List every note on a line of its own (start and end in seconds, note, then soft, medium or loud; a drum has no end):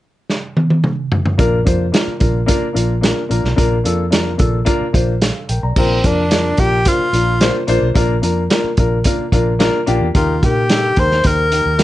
0.30 snare soft
0.57 high tom medium
0.70 high tom medium
0.84 mid tom medium
1.12 floor tom medium
1.26 floor tom medium
1.38 1.63 A#1 medium
1.38 1.57 A#3 medium
1.38 1.57 D4 medium
1.38 1.57 F4 medium
1.38 1.58 A#4 loud
1.38 kick loud
1.38 closed hi-hat medium
1.65 1.90 F2 medium
1.65 1.84 A#3 medium
1.65 1.84 D4 medium
1.65 1.84 F4 medium
1.65 1.85 C5 medium
1.65 kick medium
1.65 closed hi-hat medium
1.92 2.11 A#3 medium
1.92 2.12 D4 medium
1.92 2.12 F4 medium
1.92 2.12 A#4 medium
1.92 snare loud
1.92 closed hi-hat medium
2.08 muted fingered electric bass stroke soft
2.19 2.45 A#1 medium
2.19 2.39 A#3 medium
2.19 2.39 D4 medium
2.19 2.39 F4 medium
2.19 2.39 A#4 medium
2.19 kick medium
2.19 closed hi-hat medium
2.46 2.66 A#3 loud
2.46 2.66 D4 medium
2.46 2.66 F4 medium
2.46 2.66 A#4 loud
2.46 kick medium
2.46 closed hi-hat medium
2.62 muted fingered electric bass stroke soft
2.73 3.11 A#1 medium
2.73 2.93 A#3 medium
2.73 2.93 D4 medium
2.73 2.94 F4 medium
2.73 2.94 A#4 medium
2.73 closed hi-hat medium
3.01 3.21 A#3 medium
3.01 3.21 D4 medium
3.01 3.21 F4 medium
3.01 3.21 A#4 medium
3.01 snare medium
3.01 closed hi-hat medium
3.29 3.42 A#1 medium
3.29 3.48 A#3 medium
3.29 3.48 D4 medium
3.29 3.49 F4 medium
3.29 3.49 A#4 medium
3.29 closed hi-hat medium
3.44 3.56 B1 medium
3.44 snare soft
3.56 3.82 A#1 medium
3.56 3.75 A#3 medium
3.56 3.76 D4 medium
3.56 3.76 F4 medium
3.56 3.76 A#4 loud
3.56 kick loud
3.56 closed hi-hat medium
3.84 4.41 F2 medium
3.84 4.03 A#3 medium
3.84 4.03 D4 medium
3.84 4.03 F4 medium
3.84 4.04 A4 medium
3.84 closed hi-hat medium
4.10 4.30 A#3 medium
4.10 4.30 D4 medium
4.10 4.31 F4 medium
4.10 4.31 A#4 medium
4.10 snare loud
4.10 closed hi-hat medium
4.37 4.63 A#1 medium
4.37 4.57 A#3 medium
4.37 4.58 D4 medium
4.37 4.58 F4 medium
4.37 4.58 A4 medium
4.37 kick medium
4.37 closed hi-hat medium
4.65 4.84 A#3 loud
4.65 4.85 D4 loud
4.65 4.85 F4 medium
4.65 4.85 A#4 loud
4.65 kick medium
4.65 closed hi-hat medium
4.81 muted fingered electric bass stroke soft
4.93 5.30 A#1 medium
4.93 5.12 A#3 medium
4.93 5.12 D4 medium
4.93 5.13 F4 medium
4.93 5.13 C5 medium
4.93 kick medium
4.93 closed hi-hat medium
5.22 5.48 A4 medium
5.22 5.48 F5 medium
5.22 snare medium
5.22 closed hi-hat medium
5.49 5.61 A#1 medium
5.49 5.62 A#4 medium
5.49 5.62 G5 medium
5.49 closed hi-hat medium
5.63 5.75 B1 medium
5.63 5.89 D5 soft
5.63 5.89 A#5 medium
5.76 6.00 A#1 medium
5.76 5.95 A#3 medium
5.76 6.07 C4 medium
5.76 5.95 D4 medium
5.76 5.96 F4 medium
5.76 5.96 A#4 medium
5.76 kick medium
5.76 crash medium
6.03 6.52 F2 medium
6.03 6.22 A#3 medium
6.03 6.22 D4 medium
6.03 6.61 D4 medium
6.03 6.23 F4 medium
6.03 6.23 A#4 medium
6.03 kick medium
6.03 closed hi-hat medium
6.30 6.49 A#3 medium
6.30 6.49 D4 medium
6.30 6.50 F4 medium
6.30 6.50 A#4 medium
6.30 snare loud
6.30 closed hi-hat medium
6.57 6.82 A#1 medium
6.57 6.77 A#3 medium
6.57 6.77 D4 medium
6.57 6.77 F4 medium
6.57 6.89 G4 medium
6.57 6.77 A#4 medium
6.57 kick medium
6.57 closed hi-hat medium
6.85 7.04 A#3 medium
6.85 7.05 D4 medium
6.85 7.05 F4 medium
6.85 7.69 F4 medium
6.85 7.05 C5 medium
6.85 kick medium
6.85 closed hi-hat medium
6.99 muted fingered electric bass stroke soft
7.13 7.49 A#1 medium
7.13 7.32 A#3 medium
7.13 7.32 D4 medium
7.13 7.32 F4 medium
7.13 7.33 A#4 medium
7.13 closed hi-hat medium
7.40 7.59 A#3 medium
7.40 7.60 D4 medium
7.40 7.60 F4 medium
7.40 7.60 C5 medium
7.40 snare medium
7.40 closed hi-hat medium
7.67 7.80 A#1 medium
7.67 7.86 A#3 loud
7.67 7.87 D4 medium
7.67 7.87 F4 medium
7.67 7.87 C5 loud
7.67 closed hi-hat medium
7.82 7.94 B1 medium
7.94 8.19 A#1 medium
7.94 8.14 A#3 loud
7.94 8.14 D4 medium
7.94 8.14 F4 medium
7.94 8.15 A#4 loud
7.94 kick loud
7.94 closed hi-hat medium
8.22 8.47 F2 medium
8.22 8.41 A#3 medium
8.22 8.41 D4 medium
8.22 8.42 F4 medium
8.22 8.42 A#4 medium
8.22 closed hi-hat medium
8.50 8.69 A#3 medium
8.50 8.69 D4 medium
8.50 8.69 F4 medium
8.50 8.70 A#4 medium
8.50 snare loud
8.50 closed hi-hat medium
8.64 muted fingered electric bass stroke soft
8.77 9.02 A#1 medium
8.77 8.96 A#3 medium
8.77 8.97 D4 medium
8.77 8.97 F4 medium
8.77 8.97 A#4 medium
8.77 kick medium
8.77 closed hi-hat medium
9.04 9.24 A#3 medium
9.04 9.24 D4 medium
9.04 9.24 F4 medium
9.04 9.25 A#4 medium
9.04 kick medium
9.04 closed hi-hat medium
9.19 muted fingered electric bass stroke soft
9.32 9.68 A#1 medium
9.32 9.51 A#3 medium
9.32 9.51 D4 medium
9.32 9.52 F4 medium
9.32 9.52 A#4 medium
9.32 kick medium
9.32 closed hi-hat medium
9.59 9.78 A#3 loud
9.59 9.78 D4 loud
9.59 9.79 F4 loud
9.59 9.79 A#4 loud
9.59 snare medium
9.59 closed hi-hat medium
9.86 10.00 A#1 medium
9.86 10.05 A#3 loud
9.86 10.06 D4 loud
9.86 10.06 F4 medium
9.86 10.06 G4 loud
9.86 closed hi-hat medium
10.01 10.13 E2 medium
10.15 10.39 D#2 medium
10.15 10.33 A#3 medium
10.15 10.33 D#4 medium
10.15 10.46 F4 medium
10.15 10.34 G4 medium
10.15 10.34 A#4 medium
10.15 kick loud
10.15 closed hi-hat medium
10.42 10.90 A#2 medium
10.42 10.61 A#3 medium
10.42 10.61 D#4 medium
10.42 10.61 G4 medium
10.42 11.01 G4 medium
10.42 10.62 A#4 medium
10.42 kick medium
10.42 closed hi-hat medium
10.69 10.88 A#3 medium
10.69 10.89 D#4 medium
10.69 10.89 G4 medium
10.69 10.89 A4 medium
10.69 snare loud
10.69 closed hi-hat medium
10.96 11.21 D#2 medium
10.96 11.15 A#3 medium
10.96 11.16 D#4 medium
10.96 11.16 G4 medium
10.96 11.16 A#4 medium
10.96 11.28 C5 medium
10.96 kick medium
10.96 closed hi-hat medium
11.11 snare soft
11.24 11.60 D#2 medium
11.24 11.43 A#3 medium
11.24 11.43 D#4 medium
11.24 11.43 G4 medium
11.24 11.83 A#4 medium
11.24 11.44 C5 medium
11.24 kick medium
11.24 closed hi-hat medium
11.51 11.70 A#3 medium
11.51 11.70 D#4 medium
11.51 11.71 G4 medium
11.51 11.71 A#4 medium
11.51 closed hi-hat medium
11.66 11.83 D#2 medium
11.78 11.83 A#3 medium
11.78 11.83 D#4 medium
11.78 11.83 G4 medium
11.78 11.83 A#4 loud
11.78 snare medium
11.78 closed hi-hat medium